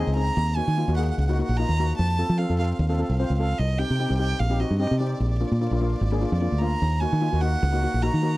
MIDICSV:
0, 0, Header, 1, 4, 480
1, 0, Start_track
1, 0, Tempo, 402685
1, 441, Time_signature, 4, 2, 24, 8
1, 9982, End_track
2, 0, Start_track
2, 0, Title_t, "Violin"
2, 0, Program_c, 0, 40
2, 0, Note_on_c, 0, 75, 105
2, 143, Note_off_c, 0, 75, 0
2, 190, Note_on_c, 0, 82, 114
2, 669, Note_on_c, 0, 80, 116
2, 687, Note_off_c, 0, 82, 0
2, 1141, Note_off_c, 0, 80, 0
2, 1148, Note_on_c, 0, 78, 96
2, 1237, Note_off_c, 0, 78, 0
2, 1244, Note_on_c, 0, 78, 80
2, 1306, Note_off_c, 0, 78, 0
2, 1313, Note_on_c, 0, 78, 80
2, 1409, Note_off_c, 0, 78, 0
2, 1429, Note_on_c, 0, 78, 75
2, 1509, Note_off_c, 0, 78, 0
2, 1516, Note_on_c, 0, 78, 84
2, 1595, Note_off_c, 0, 78, 0
2, 1602, Note_on_c, 0, 78, 70
2, 1690, Note_off_c, 0, 78, 0
2, 1697, Note_on_c, 0, 78, 96
2, 1873, Note_on_c, 0, 82, 114
2, 1891, Note_off_c, 0, 78, 0
2, 2348, Note_off_c, 0, 82, 0
2, 2355, Note_on_c, 0, 81, 105
2, 2833, Note_on_c, 0, 77, 97
2, 2851, Note_off_c, 0, 81, 0
2, 3072, Note_off_c, 0, 77, 0
2, 3079, Note_on_c, 0, 77, 98
2, 3160, Note_off_c, 0, 77, 0
2, 3168, Note_on_c, 0, 77, 63
2, 3253, Note_off_c, 0, 77, 0
2, 3259, Note_on_c, 0, 77, 74
2, 3337, Note_off_c, 0, 77, 0
2, 3345, Note_on_c, 0, 77, 58
2, 3431, Note_off_c, 0, 77, 0
2, 3439, Note_on_c, 0, 77, 70
2, 3520, Note_off_c, 0, 77, 0
2, 3529, Note_on_c, 0, 77, 56
2, 3613, Note_off_c, 0, 77, 0
2, 3623, Note_on_c, 0, 77, 69
2, 3697, Note_off_c, 0, 77, 0
2, 3704, Note_on_c, 0, 77, 62
2, 3787, Note_off_c, 0, 77, 0
2, 3793, Note_on_c, 0, 77, 72
2, 3871, Note_off_c, 0, 77, 0
2, 3879, Note_on_c, 0, 77, 69
2, 3966, Note_off_c, 0, 77, 0
2, 4037, Note_on_c, 0, 77, 92
2, 4274, Note_on_c, 0, 75, 90
2, 4292, Note_off_c, 0, 77, 0
2, 4509, Note_on_c, 0, 79, 100
2, 4527, Note_off_c, 0, 75, 0
2, 4979, Note_off_c, 0, 79, 0
2, 4986, Note_on_c, 0, 79, 102
2, 5237, Note_on_c, 0, 77, 96
2, 5255, Note_off_c, 0, 79, 0
2, 5480, Note_on_c, 0, 75, 86
2, 5498, Note_off_c, 0, 77, 0
2, 5707, Note_off_c, 0, 75, 0
2, 5714, Note_on_c, 0, 75, 92
2, 5941, Note_off_c, 0, 75, 0
2, 5946, Note_on_c, 0, 74, 79
2, 6040, Note_off_c, 0, 74, 0
2, 6049, Note_on_c, 0, 74, 68
2, 6114, Note_off_c, 0, 74, 0
2, 6121, Note_on_c, 0, 74, 63
2, 6213, Note_off_c, 0, 74, 0
2, 6222, Note_on_c, 0, 74, 54
2, 6313, Note_off_c, 0, 74, 0
2, 6321, Note_on_c, 0, 74, 65
2, 6402, Note_off_c, 0, 74, 0
2, 6407, Note_on_c, 0, 74, 59
2, 6492, Note_off_c, 0, 74, 0
2, 6509, Note_on_c, 0, 74, 58
2, 6590, Note_off_c, 0, 74, 0
2, 6597, Note_on_c, 0, 74, 62
2, 6674, Note_off_c, 0, 74, 0
2, 6682, Note_on_c, 0, 74, 66
2, 6761, Note_off_c, 0, 74, 0
2, 6769, Note_on_c, 0, 74, 52
2, 6851, Note_off_c, 0, 74, 0
2, 6864, Note_on_c, 0, 74, 64
2, 6932, Note_off_c, 0, 74, 0
2, 6939, Note_on_c, 0, 74, 49
2, 7029, Note_off_c, 0, 74, 0
2, 7043, Note_on_c, 0, 74, 66
2, 7109, Note_off_c, 0, 74, 0
2, 7117, Note_on_c, 0, 74, 57
2, 7194, Note_off_c, 0, 74, 0
2, 7201, Note_on_c, 0, 74, 71
2, 7286, Note_off_c, 0, 74, 0
2, 7293, Note_on_c, 0, 74, 53
2, 7356, Note_off_c, 0, 74, 0
2, 7363, Note_on_c, 0, 74, 68
2, 7460, Note_off_c, 0, 74, 0
2, 7467, Note_on_c, 0, 74, 59
2, 7550, Note_off_c, 0, 74, 0
2, 7557, Note_on_c, 0, 74, 77
2, 7630, Note_off_c, 0, 74, 0
2, 7637, Note_on_c, 0, 74, 81
2, 7850, Note_on_c, 0, 82, 104
2, 7868, Note_off_c, 0, 74, 0
2, 8346, Note_on_c, 0, 80, 102
2, 8364, Note_off_c, 0, 82, 0
2, 8831, Note_on_c, 0, 78, 105
2, 8849, Note_off_c, 0, 80, 0
2, 9556, Note_on_c, 0, 82, 103
2, 9574, Note_off_c, 0, 78, 0
2, 9982, Note_off_c, 0, 82, 0
2, 9982, End_track
3, 0, Start_track
3, 0, Title_t, "Steel pan"
3, 0, Program_c, 1, 114
3, 193, Note_on_c, 1, 60, 74
3, 194, Note_on_c, 1, 63, 72
3, 202, Note_on_c, 1, 68, 82
3, 437, Note_off_c, 1, 60, 0
3, 437, Note_off_c, 1, 63, 0
3, 441, Note_off_c, 1, 68, 0
3, 677, Note_on_c, 1, 63, 62
3, 678, Note_on_c, 1, 58, 76
3, 684, Note_on_c, 1, 66, 75
3, 827, Note_off_c, 1, 63, 0
3, 828, Note_off_c, 1, 58, 0
3, 831, Note_off_c, 1, 66, 0
3, 924, Note_on_c, 1, 58, 76
3, 926, Note_on_c, 1, 63, 64
3, 930, Note_on_c, 1, 65, 82
3, 998, Note_off_c, 1, 58, 0
3, 999, Note_off_c, 1, 63, 0
3, 1001, Note_off_c, 1, 65, 0
3, 1054, Note_on_c, 1, 58, 72
3, 1060, Note_on_c, 1, 63, 69
3, 1064, Note_on_c, 1, 66, 86
3, 1119, Note_off_c, 1, 58, 0
3, 1122, Note_off_c, 1, 63, 0
3, 1124, Note_off_c, 1, 66, 0
3, 1166, Note_on_c, 1, 63, 69
3, 1167, Note_on_c, 1, 68, 85
3, 1168, Note_on_c, 1, 58, 78
3, 1381, Note_off_c, 1, 63, 0
3, 1381, Note_off_c, 1, 68, 0
3, 1382, Note_off_c, 1, 58, 0
3, 1539, Note_on_c, 1, 63, 72
3, 1540, Note_on_c, 1, 58, 69
3, 1542, Note_on_c, 1, 66, 87
3, 1601, Note_off_c, 1, 63, 0
3, 1602, Note_off_c, 1, 58, 0
3, 1603, Note_off_c, 1, 66, 0
3, 1654, Note_on_c, 1, 63, 68
3, 1656, Note_on_c, 1, 58, 74
3, 1662, Note_on_c, 1, 66, 76
3, 1796, Note_off_c, 1, 63, 0
3, 1797, Note_off_c, 1, 58, 0
3, 1800, Note_off_c, 1, 66, 0
3, 1896, Note_on_c, 1, 58, 73
3, 1898, Note_on_c, 1, 63, 77
3, 1900, Note_on_c, 1, 65, 88
3, 2037, Note_off_c, 1, 58, 0
3, 2038, Note_off_c, 1, 63, 0
3, 2039, Note_off_c, 1, 65, 0
3, 2137, Note_on_c, 1, 58, 73
3, 2142, Note_on_c, 1, 63, 71
3, 2145, Note_on_c, 1, 66, 86
3, 2369, Note_off_c, 1, 58, 0
3, 2372, Note_off_c, 1, 63, 0
3, 2373, Note_off_c, 1, 66, 0
3, 2605, Note_on_c, 1, 60, 70
3, 2606, Note_on_c, 1, 65, 67
3, 2608, Note_on_c, 1, 69, 82
3, 2751, Note_off_c, 1, 60, 0
3, 2752, Note_off_c, 1, 65, 0
3, 2753, Note_off_c, 1, 69, 0
3, 2844, Note_on_c, 1, 65, 65
3, 2845, Note_on_c, 1, 69, 78
3, 2848, Note_on_c, 1, 60, 72
3, 2918, Note_off_c, 1, 65, 0
3, 2918, Note_off_c, 1, 69, 0
3, 2920, Note_off_c, 1, 60, 0
3, 2970, Note_on_c, 1, 60, 72
3, 2974, Note_on_c, 1, 65, 64
3, 2978, Note_on_c, 1, 69, 84
3, 3037, Note_off_c, 1, 60, 0
3, 3039, Note_off_c, 1, 65, 0
3, 3041, Note_off_c, 1, 69, 0
3, 3089, Note_on_c, 1, 60, 76
3, 3090, Note_on_c, 1, 65, 70
3, 3095, Note_on_c, 1, 69, 80
3, 3302, Note_off_c, 1, 60, 0
3, 3303, Note_off_c, 1, 65, 0
3, 3305, Note_off_c, 1, 69, 0
3, 3449, Note_on_c, 1, 60, 70
3, 3449, Note_on_c, 1, 65, 67
3, 3451, Note_on_c, 1, 69, 84
3, 3516, Note_off_c, 1, 60, 0
3, 3516, Note_off_c, 1, 65, 0
3, 3517, Note_off_c, 1, 69, 0
3, 3559, Note_on_c, 1, 60, 72
3, 3564, Note_on_c, 1, 65, 63
3, 3568, Note_on_c, 1, 69, 80
3, 3708, Note_off_c, 1, 60, 0
3, 3711, Note_off_c, 1, 65, 0
3, 3713, Note_off_c, 1, 69, 0
3, 3806, Note_on_c, 1, 60, 81
3, 3811, Note_on_c, 1, 65, 70
3, 3812, Note_on_c, 1, 72, 81
3, 3952, Note_off_c, 1, 60, 0
3, 3954, Note_off_c, 1, 65, 0
3, 3955, Note_off_c, 1, 72, 0
3, 4049, Note_on_c, 1, 65, 73
3, 4050, Note_on_c, 1, 60, 68
3, 4053, Note_on_c, 1, 69, 81
3, 4285, Note_off_c, 1, 60, 0
3, 4285, Note_off_c, 1, 65, 0
3, 4287, Note_off_c, 1, 69, 0
3, 4517, Note_on_c, 1, 60, 74
3, 4517, Note_on_c, 1, 63, 65
3, 4522, Note_on_c, 1, 67, 76
3, 4667, Note_off_c, 1, 60, 0
3, 4668, Note_off_c, 1, 63, 0
3, 4670, Note_off_c, 1, 67, 0
3, 4762, Note_on_c, 1, 60, 74
3, 4763, Note_on_c, 1, 63, 68
3, 4767, Note_on_c, 1, 67, 83
3, 4837, Note_off_c, 1, 60, 0
3, 4837, Note_off_c, 1, 63, 0
3, 4839, Note_off_c, 1, 67, 0
3, 4879, Note_on_c, 1, 60, 73
3, 4882, Note_on_c, 1, 63, 62
3, 4889, Note_on_c, 1, 67, 81
3, 4951, Note_off_c, 1, 60, 0
3, 4953, Note_off_c, 1, 63, 0
3, 4956, Note_off_c, 1, 67, 0
3, 4999, Note_on_c, 1, 67, 87
3, 5000, Note_on_c, 1, 60, 73
3, 5000, Note_on_c, 1, 63, 65
3, 5217, Note_off_c, 1, 63, 0
3, 5217, Note_off_c, 1, 67, 0
3, 5218, Note_off_c, 1, 60, 0
3, 5361, Note_on_c, 1, 60, 71
3, 5366, Note_on_c, 1, 63, 69
3, 5368, Note_on_c, 1, 67, 78
3, 5432, Note_off_c, 1, 60, 0
3, 5435, Note_off_c, 1, 63, 0
3, 5436, Note_off_c, 1, 67, 0
3, 5481, Note_on_c, 1, 60, 66
3, 5485, Note_on_c, 1, 63, 65
3, 5486, Note_on_c, 1, 66, 79
3, 5629, Note_off_c, 1, 60, 0
3, 5631, Note_off_c, 1, 63, 0
3, 5632, Note_off_c, 1, 66, 0
3, 5718, Note_on_c, 1, 60, 82
3, 5720, Note_on_c, 1, 67, 91
3, 5722, Note_on_c, 1, 63, 70
3, 5868, Note_off_c, 1, 60, 0
3, 5869, Note_off_c, 1, 67, 0
3, 5870, Note_off_c, 1, 63, 0
3, 5960, Note_on_c, 1, 60, 80
3, 5966, Note_on_c, 1, 63, 71
3, 5967, Note_on_c, 1, 67, 89
3, 6201, Note_off_c, 1, 60, 0
3, 6204, Note_off_c, 1, 63, 0
3, 6204, Note_off_c, 1, 67, 0
3, 6445, Note_on_c, 1, 65, 76
3, 6446, Note_on_c, 1, 58, 66
3, 6449, Note_on_c, 1, 62, 67
3, 6592, Note_off_c, 1, 58, 0
3, 6592, Note_off_c, 1, 65, 0
3, 6593, Note_off_c, 1, 62, 0
3, 6687, Note_on_c, 1, 58, 72
3, 6689, Note_on_c, 1, 62, 65
3, 6694, Note_on_c, 1, 65, 80
3, 6759, Note_off_c, 1, 58, 0
3, 6760, Note_off_c, 1, 62, 0
3, 6763, Note_off_c, 1, 65, 0
3, 6821, Note_on_c, 1, 58, 80
3, 6823, Note_on_c, 1, 62, 67
3, 6828, Note_on_c, 1, 65, 84
3, 6883, Note_off_c, 1, 58, 0
3, 6884, Note_off_c, 1, 62, 0
3, 6886, Note_off_c, 1, 65, 0
3, 6933, Note_on_c, 1, 58, 84
3, 6933, Note_on_c, 1, 62, 70
3, 6937, Note_on_c, 1, 65, 91
3, 7144, Note_off_c, 1, 58, 0
3, 7144, Note_off_c, 1, 62, 0
3, 7146, Note_off_c, 1, 65, 0
3, 7292, Note_on_c, 1, 58, 83
3, 7297, Note_on_c, 1, 62, 69
3, 7298, Note_on_c, 1, 68, 86
3, 7358, Note_off_c, 1, 58, 0
3, 7360, Note_off_c, 1, 62, 0
3, 7361, Note_off_c, 1, 68, 0
3, 7404, Note_on_c, 1, 58, 70
3, 7411, Note_on_c, 1, 62, 70
3, 7413, Note_on_c, 1, 65, 86
3, 7551, Note_off_c, 1, 58, 0
3, 7555, Note_off_c, 1, 62, 0
3, 7556, Note_off_c, 1, 65, 0
3, 7642, Note_on_c, 1, 58, 77
3, 7648, Note_on_c, 1, 62, 72
3, 7649, Note_on_c, 1, 65, 82
3, 7790, Note_off_c, 1, 58, 0
3, 7793, Note_off_c, 1, 62, 0
3, 7794, Note_off_c, 1, 65, 0
3, 7880, Note_on_c, 1, 58, 78
3, 7884, Note_on_c, 1, 62, 69
3, 7887, Note_on_c, 1, 65, 91
3, 8121, Note_off_c, 1, 58, 0
3, 8123, Note_off_c, 1, 62, 0
3, 8125, Note_off_c, 1, 65, 0
3, 8366, Note_on_c, 1, 58, 74
3, 8368, Note_on_c, 1, 63, 69
3, 8370, Note_on_c, 1, 66, 84
3, 8512, Note_off_c, 1, 58, 0
3, 8513, Note_off_c, 1, 63, 0
3, 8515, Note_off_c, 1, 66, 0
3, 8600, Note_on_c, 1, 63, 72
3, 8601, Note_on_c, 1, 58, 73
3, 8602, Note_on_c, 1, 65, 81
3, 8677, Note_off_c, 1, 58, 0
3, 8677, Note_off_c, 1, 63, 0
3, 8677, Note_off_c, 1, 65, 0
3, 8732, Note_on_c, 1, 63, 66
3, 8734, Note_on_c, 1, 66, 86
3, 8735, Note_on_c, 1, 58, 72
3, 8799, Note_off_c, 1, 63, 0
3, 8800, Note_off_c, 1, 58, 0
3, 8800, Note_off_c, 1, 66, 0
3, 8841, Note_on_c, 1, 58, 80
3, 8845, Note_on_c, 1, 63, 76
3, 8847, Note_on_c, 1, 66, 85
3, 9059, Note_off_c, 1, 58, 0
3, 9061, Note_off_c, 1, 63, 0
3, 9062, Note_off_c, 1, 66, 0
3, 9212, Note_on_c, 1, 58, 77
3, 9215, Note_on_c, 1, 63, 75
3, 9219, Note_on_c, 1, 66, 84
3, 9279, Note_off_c, 1, 58, 0
3, 9280, Note_off_c, 1, 63, 0
3, 9282, Note_off_c, 1, 66, 0
3, 9338, Note_on_c, 1, 63, 63
3, 9339, Note_on_c, 1, 58, 71
3, 9341, Note_on_c, 1, 66, 80
3, 9479, Note_off_c, 1, 58, 0
3, 9479, Note_off_c, 1, 63, 0
3, 9480, Note_off_c, 1, 66, 0
3, 9570, Note_on_c, 1, 58, 82
3, 9573, Note_on_c, 1, 66, 90
3, 9575, Note_on_c, 1, 63, 69
3, 9715, Note_off_c, 1, 58, 0
3, 9717, Note_off_c, 1, 66, 0
3, 9718, Note_off_c, 1, 63, 0
3, 9804, Note_on_c, 1, 58, 79
3, 9808, Note_on_c, 1, 63, 72
3, 9809, Note_on_c, 1, 66, 85
3, 9982, Note_off_c, 1, 58, 0
3, 9982, Note_off_c, 1, 63, 0
3, 9982, Note_off_c, 1, 66, 0
3, 9982, End_track
4, 0, Start_track
4, 0, Title_t, "Fingered electric bass"
4, 0, Program_c, 2, 33
4, 85, Note_on_c, 2, 37, 89
4, 354, Note_off_c, 2, 37, 0
4, 440, Note_on_c, 2, 39, 109
4, 717, Note_off_c, 2, 39, 0
4, 805, Note_on_c, 2, 51, 90
4, 987, Note_off_c, 2, 51, 0
4, 1047, Note_on_c, 2, 39, 91
4, 1315, Note_off_c, 2, 39, 0
4, 1405, Note_on_c, 2, 37, 92
4, 1680, Note_off_c, 2, 37, 0
4, 1776, Note_on_c, 2, 34, 92
4, 1954, Note_off_c, 2, 34, 0
4, 2012, Note_on_c, 2, 39, 92
4, 2278, Note_off_c, 2, 39, 0
4, 2372, Note_on_c, 2, 41, 97
4, 2645, Note_off_c, 2, 41, 0
4, 2734, Note_on_c, 2, 53, 93
4, 2913, Note_off_c, 2, 53, 0
4, 2975, Note_on_c, 2, 41, 78
4, 3240, Note_off_c, 2, 41, 0
4, 3327, Note_on_c, 2, 39, 102
4, 3601, Note_off_c, 2, 39, 0
4, 3689, Note_on_c, 2, 36, 92
4, 3870, Note_off_c, 2, 36, 0
4, 3933, Note_on_c, 2, 37, 97
4, 4199, Note_off_c, 2, 37, 0
4, 4283, Note_on_c, 2, 36, 92
4, 4559, Note_off_c, 2, 36, 0
4, 4653, Note_on_c, 2, 48, 87
4, 4832, Note_off_c, 2, 48, 0
4, 4892, Note_on_c, 2, 36, 79
4, 5158, Note_off_c, 2, 36, 0
4, 5244, Note_on_c, 2, 34, 100
4, 5520, Note_off_c, 2, 34, 0
4, 5609, Note_on_c, 2, 43, 94
4, 5789, Note_off_c, 2, 43, 0
4, 5854, Note_on_c, 2, 48, 91
4, 6120, Note_off_c, 2, 48, 0
4, 6200, Note_on_c, 2, 34, 97
4, 6477, Note_off_c, 2, 34, 0
4, 6575, Note_on_c, 2, 46, 88
4, 6754, Note_off_c, 2, 46, 0
4, 6807, Note_on_c, 2, 34, 83
4, 7075, Note_off_c, 2, 34, 0
4, 7165, Note_on_c, 2, 32, 102
4, 7441, Note_off_c, 2, 32, 0
4, 7535, Note_on_c, 2, 41, 94
4, 7713, Note_off_c, 2, 41, 0
4, 7773, Note_on_c, 2, 38, 88
4, 8039, Note_off_c, 2, 38, 0
4, 8127, Note_on_c, 2, 39, 100
4, 8402, Note_off_c, 2, 39, 0
4, 8493, Note_on_c, 2, 51, 89
4, 8673, Note_off_c, 2, 51, 0
4, 8734, Note_on_c, 2, 39, 84
4, 9000, Note_off_c, 2, 39, 0
4, 9091, Note_on_c, 2, 37, 106
4, 9365, Note_off_c, 2, 37, 0
4, 9463, Note_on_c, 2, 34, 95
4, 9640, Note_off_c, 2, 34, 0
4, 9699, Note_on_c, 2, 51, 91
4, 9964, Note_off_c, 2, 51, 0
4, 9982, End_track
0, 0, End_of_file